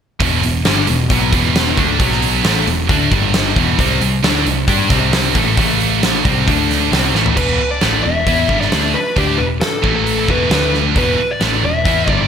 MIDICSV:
0, 0, Header, 1, 8, 480
1, 0, Start_track
1, 0, Key_signature, 1, "minor"
1, 0, Tempo, 448096
1, 220, Time_signature, 4, 2, 24, 8
1, 13149, End_track
2, 0, Start_track
2, 0, Title_t, "Lead electric guitar"
2, 0, Program_c, 0, 29
2, 7894, Note_on_c, 0, 71, 86
2, 8233, Note_off_c, 0, 71, 0
2, 8258, Note_on_c, 0, 74, 90
2, 8605, Note_off_c, 0, 74, 0
2, 8610, Note_on_c, 0, 76, 99
2, 9217, Note_off_c, 0, 76, 0
2, 9221, Note_on_c, 0, 74, 81
2, 9577, Note_on_c, 0, 71, 86
2, 9593, Note_off_c, 0, 74, 0
2, 9826, Note_on_c, 0, 67, 74
2, 9828, Note_off_c, 0, 71, 0
2, 10046, Note_on_c, 0, 71, 85
2, 10072, Note_off_c, 0, 67, 0
2, 10113, Note_off_c, 0, 71, 0
2, 10292, Note_on_c, 0, 69, 80
2, 10654, Note_off_c, 0, 69, 0
2, 10666, Note_on_c, 0, 69, 82
2, 11036, Note_off_c, 0, 69, 0
2, 11045, Note_on_c, 0, 71, 83
2, 11481, Note_off_c, 0, 71, 0
2, 11759, Note_on_c, 0, 71, 83
2, 12114, Note_on_c, 0, 74, 81
2, 12121, Note_off_c, 0, 71, 0
2, 12479, Note_off_c, 0, 74, 0
2, 12486, Note_on_c, 0, 76, 94
2, 12957, Note_off_c, 0, 76, 0
2, 12957, Note_on_c, 0, 74, 94
2, 13087, Note_off_c, 0, 74, 0
2, 13087, Note_on_c, 0, 74, 75
2, 13149, Note_off_c, 0, 74, 0
2, 13149, End_track
3, 0, Start_track
3, 0, Title_t, "Overdriven electric guitar"
3, 0, Program_c, 1, 29
3, 211, Note_on_c, 1, 40, 87
3, 217, Note_on_c, 1, 52, 106
3, 218, Note_on_c, 1, 47, 85
3, 443, Note_off_c, 1, 40, 0
3, 443, Note_off_c, 1, 47, 0
3, 451, Note_off_c, 1, 52, 0
3, 456, Note_on_c, 1, 40, 66
3, 456, Note_on_c, 1, 47, 65
3, 650, Note_off_c, 1, 40, 0
3, 650, Note_off_c, 1, 47, 0
3, 687, Note_on_c, 1, 43, 98
3, 694, Note_on_c, 1, 50, 97
3, 701, Note_on_c, 1, 55, 104
3, 927, Note_off_c, 1, 43, 0
3, 930, Note_off_c, 1, 50, 0
3, 933, Note_off_c, 1, 55, 0
3, 935, Note_on_c, 1, 40, 61
3, 938, Note_on_c, 1, 47, 69
3, 1130, Note_off_c, 1, 40, 0
3, 1131, Note_off_c, 1, 47, 0
3, 1168, Note_on_c, 1, 47, 88
3, 1173, Note_on_c, 1, 54, 88
3, 1177, Note_on_c, 1, 59, 97
3, 1403, Note_off_c, 1, 47, 0
3, 1410, Note_off_c, 1, 54, 0
3, 1412, Note_off_c, 1, 59, 0
3, 1412, Note_on_c, 1, 40, 76
3, 1415, Note_on_c, 1, 47, 94
3, 1422, Note_on_c, 1, 52, 108
3, 1890, Note_off_c, 1, 40, 0
3, 1890, Note_off_c, 1, 52, 0
3, 1891, Note_off_c, 1, 47, 0
3, 1895, Note_on_c, 1, 50, 92
3, 1895, Note_on_c, 1, 57, 89
3, 1904, Note_on_c, 1, 62, 87
3, 2129, Note_off_c, 1, 50, 0
3, 2131, Note_off_c, 1, 57, 0
3, 2133, Note_on_c, 1, 47, 91
3, 2136, Note_off_c, 1, 62, 0
3, 2141, Note_on_c, 1, 54, 100
3, 2144, Note_on_c, 1, 59, 92
3, 2604, Note_off_c, 1, 47, 0
3, 2608, Note_off_c, 1, 54, 0
3, 2609, Note_on_c, 1, 45, 89
3, 2612, Note_off_c, 1, 59, 0
3, 2613, Note_on_c, 1, 52, 98
3, 2616, Note_on_c, 1, 57, 105
3, 2848, Note_off_c, 1, 45, 0
3, 2850, Note_off_c, 1, 52, 0
3, 2852, Note_off_c, 1, 57, 0
3, 2853, Note_on_c, 1, 40, 62
3, 2858, Note_on_c, 1, 47, 67
3, 3049, Note_off_c, 1, 40, 0
3, 3052, Note_off_c, 1, 47, 0
3, 3092, Note_on_c, 1, 50, 94
3, 3097, Note_on_c, 1, 57, 82
3, 3105, Note_on_c, 1, 62, 95
3, 3324, Note_off_c, 1, 50, 0
3, 3331, Note_on_c, 1, 43, 81
3, 3332, Note_off_c, 1, 57, 0
3, 3336, Note_off_c, 1, 62, 0
3, 3337, Note_on_c, 1, 50, 104
3, 3341, Note_on_c, 1, 55, 97
3, 3809, Note_off_c, 1, 43, 0
3, 3812, Note_off_c, 1, 50, 0
3, 3813, Note_on_c, 1, 40, 82
3, 3814, Note_off_c, 1, 55, 0
3, 3821, Note_on_c, 1, 47, 80
3, 3821, Note_on_c, 1, 52, 97
3, 4046, Note_off_c, 1, 47, 0
3, 4050, Note_off_c, 1, 40, 0
3, 4051, Note_on_c, 1, 48, 88
3, 4054, Note_off_c, 1, 52, 0
3, 4059, Note_on_c, 1, 55, 93
3, 4062, Note_on_c, 1, 60, 103
3, 4283, Note_off_c, 1, 48, 0
3, 4287, Note_off_c, 1, 55, 0
3, 4295, Note_off_c, 1, 60, 0
3, 4296, Note_on_c, 1, 48, 64
3, 4300, Note_on_c, 1, 55, 76
3, 4491, Note_off_c, 1, 48, 0
3, 4493, Note_off_c, 1, 55, 0
3, 4534, Note_on_c, 1, 50, 101
3, 4539, Note_on_c, 1, 57, 90
3, 4541, Note_on_c, 1, 62, 95
3, 4764, Note_off_c, 1, 57, 0
3, 4766, Note_off_c, 1, 50, 0
3, 4769, Note_on_c, 1, 55, 57
3, 4770, Note_on_c, 1, 48, 58
3, 4774, Note_off_c, 1, 62, 0
3, 4967, Note_off_c, 1, 55, 0
3, 4968, Note_off_c, 1, 48, 0
3, 5003, Note_on_c, 1, 55, 94
3, 5008, Note_on_c, 1, 62, 92
3, 5015, Note_on_c, 1, 67, 84
3, 5234, Note_off_c, 1, 55, 0
3, 5238, Note_on_c, 1, 48, 81
3, 5242, Note_off_c, 1, 62, 0
3, 5246, Note_on_c, 1, 60, 93
3, 5247, Note_on_c, 1, 55, 90
3, 5251, Note_off_c, 1, 67, 0
3, 5718, Note_off_c, 1, 48, 0
3, 5722, Note_on_c, 1, 45, 90
3, 5726, Note_off_c, 1, 55, 0
3, 5726, Note_off_c, 1, 60, 0
3, 5730, Note_on_c, 1, 52, 86
3, 5732, Note_on_c, 1, 57, 97
3, 5955, Note_off_c, 1, 45, 0
3, 5961, Note_off_c, 1, 52, 0
3, 5963, Note_off_c, 1, 57, 0
3, 5968, Note_on_c, 1, 45, 89
3, 5974, Note_on_c, 1, 52, 86
3, 5976, Note_on_c, 1, 57, 90
3, 6687, Note_off_c, 1, 45, 0
3, 6690, Note_off_c, 1, 52, 0
3, 6691, Note_off_c, 1, 57, 0
3, 6692, Note_on_c, 1, 48, 80
3, 6698, Note_on_c, 1, 55, 79
3, 6701, Note_on_c, 1, 60, 88
3, 6930, Note_off_c, 1, 48, 0
3, 6932, Note_off_c, 1, 55, 0
3, 6934, Note_off_c, 1, 60, 0
3, 6936, Note_on_c, 1, 50, 88
3, 6939, Note_on_c, 1, 57, 97
3, 6943, Note_on_c, 1, 62, 96
3, 7403, Note_off_c, 1, 50, 0
3, 7407, Note_off_c, 1, 57, 0
3, 7407, Note_on_c, 1, 48, 75
3, 7410, Note_off_c, 1, 62, 0
3, 7411, Note_on_c, 1, 55, 72
3, 7415, Note_on_c, 1, 60, 94
3, 7647, Note_off_c, 1, 48, 0
3, 7649, Note_off_c, 1, 55, 0
3, 7651, Note_off_c, 1, 60, 0
3, 7660, Note_on_c, 1, 45, 81
3, 7666, Note_on_c, 1, 52, 95
3, 7670, Note_on_c, 1, 57, 89
3, 7884, Note_off_c, 1, 52, 0
3, 7888, Note_off_c, 1, 45, 0
3, 7890, Note_on_c, 1, 40, 87
3, 7892, Note_on_c, 1, 47, 82
3, 7897, Note_on_c, 1, 52, 94
3, 7899, Note_off_c, 1, 57, 0
3, 8129, Note_off_c, 1, 40, 0
3, 8130, Note_off_c, 1, 47, 0
3, 8132, Note_off_c, 1, 52, 0
3, 8372, Note_on_c, 1, 45, 88
3, 8381, Note_on_c, 1, 52, 94
3, 8381, Note_on_c, 1, 57, 99
3, 8610, Note_off_c, 1, 45, 0
3, 8615, Note_off_c, 1, 52, 0
3, 8615, Note_off_c, 1, 57, 0
3, 8628, Note_on_c, 1, 40, 59
3, 8632, Note_on_c, 1, 47, 59
3, 8817, Note_off_c, 1, 40, 0
3, 8819, Note_off_c, 1, 47, 0
3, 8860, Note_on_c, 1, 52, 84
3, 8863, Note_on_c, 1, 59, 101
3, 8865, Note_on_c, 1, 64, 95
3, 9093, Note_on_c, 1, 43, 84
3, 9094, Note_off_c, 1, 52, 0
3, 9095, Note_off_c, 1, 59, 0
3, 9097, Note_off_c, 1, 64, 0
3, 9099, Note_on_c, 1, 50, 99
3, 9099, Note_on_c, 1, 55, 93
3, 9329, Note_off_c, 1, 50, 0
3, 9331, Note_off_c, 1, 43, 0
3, 9334, Note_off_c, 1, 55, 0
3, 9342, Note_on_c, 1, 50, 77
3, 9346, Note_on_c, 1, 57, 90
3, 9348, Note_on_c, 1, 62, 80
3, 9575, Note_off_c, 1, 50, 0
3, 9577, Note_off_c, 1, 57, 0
3, 9578, Note_off_c, 1, 62, 0
3, 9815, Note_on_c, 1, 50, 85
3, 9816, Note_on_c, 1, 57, 86
3, 9825, Note_on_c, 1, 62, 99
3, 10052, Note_off_c, 1, 50, 0
3, 10053, Note_off_c, 1, 57, 0
3, 10054, Note_on_c, 1, 40, 54
3, 10057, Note_off_c, 1, 62, 0
3, 10059, Note_on_c, 1, 47, 63
3, 10251, Note_off_c, 1, 40, 0
3, 10254, Note_off_c, 1, 47, 0
3, 10538, Note_on_c, 1, 45, 77
3, 10542, Note_on_c, 1, 52, 80
3, 10548, Note_on_c, 1, 57, 81
3, 11012, Note_off_c, 1, 52, 0
3, 11014, Note_off_c, 1, 45, 0
3, 11016, Note_on_c, 1, 40, 90
3, 11018, Note_off_c, 1, 57, 0
3, 11020, Note_on_c, 1, 47, 91
3, 11025, Note_on_c, 1, 52, 94
3, 11241, Note_off_c, 1, 47, 0
3, 11246, Note_on_c, 1, 50, 78
3, 11247, Note_off_c, 1, 52, 0
3, 11252, Note_on_c, 1, 57, 84
3, 11253, Note_off_c, 1, 40, 0
3, 11257, Note_on_c, 1, 62, 81
3, 11727, Note_off_c, 1, 50, 0
3, 11729, Note_on_c, 1, 40, 86
3, 11730, Note_off_c, 1, 57, 0
3, 11732, Note_on_c, 1, 47, 104
3, 11733, Note_off_c, 1, 62, 0
3, 11735, Note_on_c, 1, 52, 103
3, 11956, Note_off_c, 1, 40, 0
3, 11970, Note_off_c, 1, 47, 0
3, 11972, Note_off_c, 1, 52, 0
3, 12211, Note_on_c, 1, 45, 91
3, 12212, Note_on_c, 1, 52, 100
3, 12219, Note_on_c, 1, 57, 99
3, 12449, Note_off_c, 1, 45, 0
3, 12450, Note_off_c, 1, 52, 0
3, 12452, Note_on_c, 1, 40, 59
3, 12453, Note_off_c, 1, 57, 0
3, 12453, Note_on_c, 1, 47, 65
3, 12649, Note_off_c, 1, 40, 0
3, 12649, Note_off_c, 1, 47, 0
3, 12682, Note_on_c, 1, 52, 91
3, 12689, Note_on_c, 1, 59, 93
3, 12693, Note_on_c, 1, 64, 90
3, 12924, Note_off_c, 1, 52, 0
3, 12928, Note_off_c, 1, 59, 0
3, 12929, Note_off_c, 1, 64, 0
3, 12934, Note_on_c, 1, 43, 78
3, 12940, Note_on_c, 1, 50, 83
3, 12944, Note_on_c, 1, 55, 86
3, 13149, Note_off_c, 1, 43, 0
3, 13149, Note_off_c, 1, 50, 0
3, 13149, Note_off_c, 1, 55, 0
3, 13149, End_track
4, 0, Start_track
4, 0, Title_t, "Picked electric bass"
4, 0, Program_c, 2, 34
4, 218, Note_on_c, 2, 28, 97
4, 442, Note_off_c, 2, 28, 0
4, 474, Note_on_c, 2, 28, 81
4, 691, Note_off_c, 2, 28, 0
4, 716, Note_on_c, 2, 31, 82
4, 932, Note_off_c, 2, 31, 0
4, 961, Note_on_c, 2, 28, 73
4, 1175, Note_off_c, 2, 28, 0
4, 1182, Note_on_c, 2, 35, 93
4, 1405, Note_off_c, 2, 35, 0
4, 1421, Note_on_c, 2, 28, 82
4, 1867, Note_off_c, 2, 28, 0
4, 1897, Note_on_c, 2, 38, 99
4, 2122, Note_off_c, 2, 38, 0
4, 2142, Note_on_c, 2, 35, 84
4, 2588, Note_off_c, 2, 35, 0
4, 2630, Note_on_c, 2, 33, 95
4, 2849, Note_off_c, 2, 33, 0
4, 2867, Note_on_c, 2, 28, 90
4, 3088, Note_off_c, 2, 28, 0
4, 3098, Note_on_c, 2, 38, 95
4, 3323, Note_off_c, 2, 38, 0
4, 3341, Note_on_c, 2, 31, 89
4, 3787, Note_off_c, 2, 31, 0
4, 3818, Note_on_c, 2, 28, 94
4, 4043, Note_off_c, 2, 28, 0
4, 4059, Note_on_c, 2, 36, 96
4, 4283, Note_off_c, 2, 36, 0
4, 4298, Note_on_c, 2, 36, 84
4, 4523, Note_off_c, 2, 36, 0
4, 4545, Note_on_c, 2, 38, 100
4, 4767, Note_off_c, 2, 38, 0
4, 4781, Note_on_c, 2, 36, 88
4, 5004, Note_off_c, 2, 36, 0
4, 5013, Note_on_c, 2, 43, 94
4, 5240, Note_off_c, 2, 43, 0
4, 5250, Note_on_c, 2, 36, 92
4, 5702, Note_off_c, 2, 36, 0
4, 5739, Note_on_c, 2, 33, 94
4, 5963, Note_off_c, 2, 33, 0
4, 5969, Note_on_c, 2, 33, 88
4, 6652, Note_off_c, 2, 33, 0
4, 6698, Note_on_c, 2, 36, 90
4, 6923, Note_off_c, 2, 36, 0
4, 6938, Note_on_c, 2, 38, 90
4, 7386, Note_off_c, 2, 38, 0
4, 7415, Note_on_c, 2, 36, 96
4, 7641, Note_off_c, 2, 36, 0
4, 7648, Note_on_c, 2, 33, 89
4, 7877, Note_off_c, 2, 33, 0
4, 7891, Note_on_c, 2, 28, 84
4, 8119, Note_off_c, 2, 28, 0
4, 8383, Note_on_c, 2, 33, 89
4, 8606, Note_off_c, 2, 33, 0
4, 8627, Note_on_c, 2, 28, 73
4, 8848, Note_off_c, 2, 28, 0
4, 8854, Note_on_c, 2, 40, 93
4, 9081, Note_off_c, 2, 40, 0
4, 9092, Note_on_c, 2, 31, 85
4, 9321, Note_off_c, 2, 31, 0
4, 9345, Note_on_c, 2, 38, 99
4, 9568, Note_off_c, 2, 38, 0
4, 9820, Note_on_c, 2, 38, 83
4, 10045, Note_off_c, 2, 38, 0
4, 10071, Note_on_c, 2, 28, 71
4, 10291, Note_off_c, 2, 28, 0
4, 10538, Note_on_c, 2, 33, 92
4, 10987, Note_off_c, 2, 33, 0
4, 11016, Note_on_c, 2, 28, 75
4, 11242, Note_off_c, 2, 28, 0
4, 11258, Note_on_c, 2, 38, 92
4, 11707, Note_off_c, 2, 38, 0
4, 11743, Note_on_c, 2, 28, 96
4, 11966, Note_off_c, 2, 28, 0
4, 12227, Note_on_c, 2, 33, 91
4, 12448, Note_off_c, 2, 33, 0
4, 12454, Note_on_c, 2, 28, 72
4, 12680, Note_off_c, 2, 28, 0
4, 12699, Note_on_c, 2, 40, 87
4, 12923, Note_off_c, 2, 40, 0
4, 12932, Note_on_c, 2, 31, 75
4, 13149, Note_off_c, 2, 31, 0
4, 13149, End_track
5, 0, Start_track
5, 0, Title_t, "Muted distorted electric guitar strokes"
5, 8138, Note_on_c, 9, 29, 44
5, 8245, Note_off_c, 9, 29, 0
5, 11990, Note_on_c, 9, 29, 42
5, 12097, Note_off_c, 9, 29, 0
5, 13149, End_track
6, 0, Start_track
6, 0, Title_t, "Muted overdriven electric guitar strokes"
6, 8142, Note_on_c, 9, 29, 53
6, 8249, Note_off_c, 9, 29, 0
6, 11969, Note_on_c, 9, 29, 49
6, 12076, Note_off_c, 9, 29, 0
6, 13149, End_track
7, 0, Start_track
7, 0, Title_t, "Muted picked electric bass strokes"
7, 8148, Note_on_c, 9, 29, 37
7, 8255, Note_off_c, 9, 29, 0
7, 11987, Note_on_c, 9, 29, 37
7, 12094, Note_off_c, 9, 29, 0
7, 13149, End_track
8, 0, Start_track
8, 0, Title_t, "Drums"
8, 218, Note_on_c, 9, 46, 73
8, 219, Note_on_c, 9, 36, 111
8, 325, Note_off_c, 9, 46, 0
8, 326, Note_off_c, 9, 36, 0
8, 464, Note_on_c, 9, 46, 58
8, 572, Note_off_c, 9, 46, 0
8, 697, Note_on_c, 9, 46, 78
8, 699, Note_on_c, 9, 38, 105
8, 804, Note_off_c, 9, 46, 0
8, 806, Note_off_c, 9, 38, 0
8, 934, Note_on_c, 9, 46, 60
8, 1041, Note_off_c, 9, 46, 0
8, 1178, Note_on_c, 9, 46, 78
8, 1179, Note_on_c, 9, 36, 93
8, 1285, Note_off_c, 9, 46, 0
8, 1286, Note_off_c, 9, 36, 0
8, 1420, Note_on_c, 9, 36, 91
8, 1421, Note_on_c, 9, 46, 61
8, 1528, Note_off_c, 9, 36, 0
8, 1528, Note_off_c, 9, 46, 0
8, 1667, Note_on_c, 9, 46, 78
8, 1669, Note_on_c, 9, 38, 106
8, 1774, Note_off_c, 9, 46, 0
8, 1776, Note_off_c, 9, 38, 0
8, 1901, Note_on_c, 9, 36, 97
8, 1907, Note_on_c, 9, 46, 55
8, 2008, Note_off_c, 9, 36, 0
8, 2014, Note_off_c, 9, 46, 0
8, 2140, Note_on_c, 9, 36, 115
8, 2142, Note_on_c, 9, 46, 76
8, 2247, Note_off_c, 9, 36, 0
8, 2249, Note_off_c, 9, 46, 0
8, 2266, Note_on_c, 9, 38, 32
8, 2373, Note_off_c, 9, 38, 0
8, 2382, Note_on_c, 9, 46, 60
8, 2489, Note_off_c, 9, 46, 0
8, 2620, Note_on_c, 9, 46, 74
8, 2622, Note_on_c, 9, 38, 103
8, 2727, Note_off_c, 9, 46, 0
8, 2729, Note_off_c, 9, 38, 0
8, 2865, Note_on_c, 9, 46, 54
8, 2972, Note_off_c, 9, 46, 0
8, 3099, Note_on_c, 9, 36, 100
8, 3105, Note_on_c, 9, 46, 73
8, 3206, Note_off_c, 9, 36, 0
8, 3212, Note_off_c, 9, 46, 0
8, 3338, Note_on_c, 9, 36, 101
8, 3341, Note_on_c, 9, 46, 47
8, 3445, Note_off_c, 9, 36, 0
8, 3448, Note_off_c, 9, 46, 0
8, 3577, Note_on_c, 9, 46, 68
8, 3579, Note_on_c, 9, 38, 117
8, 3684, Note_off_c, 9, 46, 0
8, 3686, Note_off_c, 9, 38, 0
8, 3818, Note_on_c, 9, 36, 95
8, 3823, Note_on_c, 9, 46, 52
8, 3925, Note_off_c, 9, 36, 0
8, 3930, Note_off_c, 9, 46, 0
8, 4057, Note_on_c, 9, 36, 97
8, 4060, Note_on_c, 9, 46, 77
8, 4165, Note_off_c, 9, 36, 0
8, 4167, Note_off_c, 9, 46, 0
8, 4300, Note_on_c, 9, 46, 57
8, 4408, Note_off_c, 9, 46, 0
8, 4543, Note_on_c, 9, 46, 75
8, 4545, Note_on_c, 9, 38, 109
8, 4650, Note_off_c, 9, 46, 0
8, 4652, Note_off_c, 9, 38, 0
8, 4783, Note_on_c, 9, 46, 58
8, 4890, Note_off_c, 9, 46, 0
8, 5011, Note_on_c, 9, 36, 98
8, 5014, Note_on_c, 9, 46, 83
8, 5119, Note_off_c, 9, 36, 0
8, 5121, Note_off_c, 9, 46, 0
8, 5251, Note_on_c, 9, 46, 59
8, 5252, Note_on_c, 9, 36, 109
8, 5253, Note_on_c, 9, 38, 34
8, 5358, Note_off_c, 9, 46, 0
8, 5359, Note_off_c, 9, 36, 0
8, 5360, Note_off_c, 9, 38, 0
8, 5495, Note_on_c, 9, 46, 87
8, 5498, Note_on_c, 9, 38, 114
8, 5603, Note_off_c, 9, 46, 0
8, 5605, Note_off_c, 9, 38, 0
8, 5732, Note_on_c, 9, 36, 106
8, 5732, Note_on_c, 9, 46, 60
8, 5839, Note_off_c, 9, 36, 0
8, 5839, Note_off_c, 9, 46, 0
8, 5970, Note_on_c, 9, 46, 77
8, 5972, Note_on_c, 9, 36, 113
8, 6078, Note_off_c, 9, 46, 0
8, 6079, Note_off_c, 9, 36, 0
8, 6218, Note_on_c, 9, 46, 54
8, 6325, Note_off_c, 9, 46, 0
8, 6459, Note_on_c, 9, 46, 79
8, 6461, Note_on_c, 9, 38, 104
8, 6566, Note_off_c, 9, 46, 0
8, 6568, Note_off_c, 9, 38, 0
8, 6697, Note_on_c, 9, 36, 109
8, 6701, Note_on_c, 9, 46, 61
8, 6804, Note_off_c, 9, 36, 0
8, 6808, Note_off_c, 9, 46, 0
8, 6937, Note_on_c, 9, 36, 100
8, 6940, Note_on_c, 9, 46, 74
8, 7045, Note_off_c, 9, 36, 0
8, 7047, Note_off_c, 9, 46, 0
8, 7184, Note_on_c, 9, 46, 51
8, 7186, Note_on_c, 9, 38, 33
8, 7291, Note_off_c, 9, 46, 0
8, 7293, Note_off_c, 9, 38, 0
8, 7424, Note_on_c, 9, 46, 76
8, 7426, Note_on_c, 9, 38, 101
8, 7531, Note_off_c, 9, 46, 0
8, 7533, Note_off_c, 9, 38, 0
8, 7659, Note_on_c, 9, 38, 60
8, 7766, Note_off_c, 9, 38, 0
8, 7776, Note_on_c, 9, 43, 84
8, 7883, Note_off_c, 9, 43, 0
8, 7894, Note_on_c, 9, 36, 100
8, 7896, Note_on_c, 9, 49, 89
8, 8001, Note_off_c, 9, 36, 0
8, 8003, Note_off_c, 9, 49, 0
8, 8369, Note_on_c, 9, 46, 50
8, 8371, Note_on_c, 9, 38, 89
8, 8476, Note_off_c, 9, 46, 0
8, 8478, Note_off_c, 9, 38, 0
8, 8855, Note_on_c, 9, 36, 99
8, 8859, Note_on_c, 9, 46, 52
8, 8963, Note_off_c, 9, 36, 0
8, 8966, Note_off_c, 9, 46, 0
8, 9095, Note_on_c, 9, 36, 89
8, 9202, Note_off_c, 9, 36, 0
8, 9228, Note_on_c, 9, 38, 26
8, 9335, Note_off_c, 9, 38, 0
8, 9341, Note_on_c, 9, 46, 57
8, 9343, Note_on_c, 9, 38, 113
8, 9448, Note_off_c, 9, 46, 0
8, 9450, Note_off_c, 9, 38, 0
8, 9818, Note_on_c, 9, 36, 91
8, 9825, Note_on_c, 9, 46, 47
8, 9925, Note_off_c, 9, 36, 0
8, 9932, Note_off_c, 9, 46, 0
8, 10297, Note_on_c, 9, 46, 50
8, 10299, Note_on_c, 9, 38, 99
8, 10404, Note_off_c, 9, 46, 0
8, 10407, Note_off_c, 9, 38, 0
8, 10538, Note_on_c, 9, 36, 88
8, 10645, Note_off_c, 9, 36, 0
8, 10784, Note_on_c, 9, 46, 45
8, 10891, Note_off_c, 9, 46, 0
8, 11017, Note_on_c, 9, 36, 97
8, 11124, Note_off_c, 9, 36, 0
8, 11258, Note_on_c, 9, 46, 52
8, 11261, Note_on_c, 9, 38, 112
8, 11366, Note_off_c, 9, 46, 0
8, 11368, Note_off_c, 9, 38, 0
8, 11505, Note_on_c, 9, 38, 30
8, 11612, Note_off_c, 9, 38, 0
8, 11739, Note_on_c, 9, 36, 102
8, 11746, Note_on_c, 9, 46, 44
8, 11846, Note_off_c, 9, 36, 0
8, 11853, Note_off_c, 9, 46, 0
8, 12219, Note_on_c, 9, 46, 50
8, 12221, Note_on_c, 9, 38, 99
8, 12326, Note_off_c, 9, 46, 0
8, 12328, Note_off_c, 9, 38, 0
8, 12699, Note_on_c, 9, 36, 93
8, 12706, Note_on_c, 9, 46, 47
8, 12806, Note_off_c, 9, 36, 0
8, 12813, Note_off_c, 9, 46, 0
8, 12937, Note_on_c, 9, 36, 97
8, 13044, Note_off_c, 9, 36, 0
8, 13149, End_track
0, 0, End_of_file